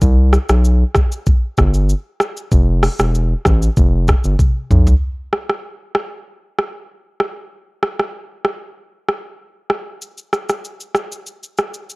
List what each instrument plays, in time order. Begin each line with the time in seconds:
0.02 analog synth bass C2, kick, shaker
0.33 cross-stick, shaker
0.49 analog synth bass B1, cross-stick, shaker
0.65 shaker
0.95 kick, cross-stick, shaker
1.12 shaker
1.27 kick, shaker
1.58 analog synth bass G1, kick, cross-stick, shaker
1.74 shaker
1.89 shaker
2.20 cross-stick, shaker
2.37 shaker
2.52 analog synth bass F1, kick, shaker
2.83 cross-stick, open hi-hat, shaker
2.99 analog synth bass E1, cross-stick, shaker
3.15 shaker
3.45 analog synth bass A1, kick, cross-stick, shaker
3.62 shaker
3.77 analog synth bass F1, kick, shaker
4.08 kick, cross-stick, shaker
4.24 analog synth bass G1, shaker
4.39 kick, high tom, shaker
4.71 analog synth bass B1, mid tom, shaker
4.87 floor tom, shaker
5.33 cross-stick
5.50 cross-stick
5.95 cross-stick
6.59 cross-stick
7.20 cross-stick
7.83 cross-stick
8.00 cross-stick
8.45 cross-stick
9.09 cross-stick
9.70 cross-stick
10.02 shaker
10.18 shaker
10.33 cross-stick, shaker
10.49 cross-stick, shaker
10.65 shaker
10.80 shaker
10.95 cross-stick, shaker
11.12 shaker
11.27 shaker
11.43 shaker
11.58 cross-stick, shaker
11.74 shaker
11.90 shaker